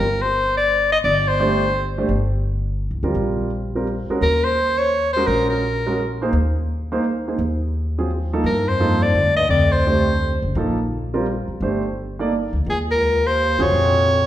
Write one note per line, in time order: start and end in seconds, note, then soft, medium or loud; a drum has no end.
0.00 1.00 G1 medium
0.00 0.23 A#4 medium
0.22 0.57 C5 medium
0.57 0.90 D5 medium
0.92 0.98 D#5 medium
1.04 2.06 G1 medium
1.04 1.29 D5 loud
1.28 1.98 C5 medium
1.40 1.60 A3 medium
1.40 1.60 D4 medium
1.40 1.60 G4 medium
1.40 1.60 C5 medium
1.98 2.09 A3 medium
1.98 2.09 D4 medium
1.98 2.09 G4 medium
1.98 2.10 C5 medium
2.09 2.88 G1 medium
2.91 3.02 C2 medium
3.03 3.14 D2 medium
3.03 3.49 G3 medium
3.03 3.49 C4 soft
3.03 3.49 F4 medium
3.03 3.49 A#4 medium
3.15 4.04 A#1 medium
3.75 3.86 G3 medium
3.75 3.86 C4 soft
3.75 3.86 F4 soft
3.75 3.86 A#4 medium
4.09 4.21 G#3 medium
4.09 4.21 C#4 medium
4.09 4.21 F#4 medium
4.09 4.22 A#4 medium
4.09 muted upright bass stroke soft
4.21 5.23 D#2 medium
4.21 4.46 A#4 medium
4.44 4.79 C5 medium
4.78 5.12 C#5 medium
5.13 5.61 G#3 medium
5.13 5.61 C#4 medium
5.13 5.61 F#4 medium
5.13 5.28 C5 medium
5.17 5.62 A#4 medium
5.27 6.29 A#1 medium
5.27 5.49 A#4 medium
5.50 6.17 A#4 medium
5.87 5.98 G#3 medium
5.87 5.98 C#4 medium
5.87 5.98 F#4 medium
5.87 5.98 A#4 medium
6.22 6.33 A#3 medium
6.22 6.33 D#4 medium
6.22 6.33 G#4 medium
6.22 6.33 C5 medium
6.33 7.35 D#2 medium
6.92 7.03 A#3 medium
6.92 7.03 D#4 medium
6.92 7.04 G#4 medium
6.92 7.04 C5 medium
7.28 7.39 A#3 medium
7.28 7.39 D#4 soft
7.28 7.39 G#4 soft
7.28 7.39 C5 medium
7.38 8.41 D#2 medium
7.98 8.09 F#3 medium
7.98 8.09 C4 soft
7.98 8.09 F4 soft
7.98 8.09 G#4 medium
8.33 8.44 F3 medium
8.33 8.44 A#3 medium
8.33 8.45 D#4 medium
8.33 8.44 A4 medium
8.44 8.66 D2 medium
8.44 9.11 G2 medium
8.44 8.70 A#4 medium
8.65 9.00 F2 medium
8.65 9.04 C5 medium
8.80 9.00 F3 medium
8.80 9.00 A#3 medium
8.80 9.01 D#4 medium
8.80 9.01 A4 medium
9.00 9.35 F2 medium
9.00 9.36 D5 medium
9.15 9.48 D2 medium
9.35 9.47 G2 medium
9.35 9.49 D#5 medium
9.47 10.38 D2 medium
9.47 9.71 F2 medium
9.47 9.73 D5 medium
9.71 10.42 F2 medium
9.71 10.43 C5 medium
9.87 10.06 A3 medium
9.87 10.06 D4 medium
9.87 10.06 G4 soft
9.87 10.07 C5 medium
10.42 10.55 F#1 medium
10.55 11.44 A#1 medium
10.55 10.76 F3 medium
10.55 10.76 A#3 medium
10.55 10.77 D#4 medium
10.55 10.77 A4 medium
11.14 11.25 G3 medium
11.14 11.25 C4 medium
11.14 11.25 F4 medium
11.14 11.25 A#4 medium
11.48 muted upright bass stroke soft
11.60 12.49 G1 medium
11.60 11.82 A3 medium
11.60 11.82 D4 soft
11.60 11.82 G4 soft
11.60 11.82 C5 medium
12.19 12.30 A#3 medium
12.19 12.31 D#4 medium
12.19 12.31 A4 medium
12.19 12.31 D5 medium
12.53 12.65 D2 medium
12.66 12.77 C#2 medium
12.66 13.55 D#2 medium
12.66 12.79 G#4 medium
12.90 13.27 C#2 medium
12.90 13.28 A#4 medium
13.25 13.61 D#2 medium
13.25 13.64 C5 medium
13.59 13.71 C#2 medium
13.59 14.27 F2 medium
13.59 14.04 C3 medium
13.59 14.04 F4 medium
13.59 14.04 F#4 medium
13.59 14.05 G#4 medium
13.59 14.27 C#5 loud
13.72 14.27 A#1 medium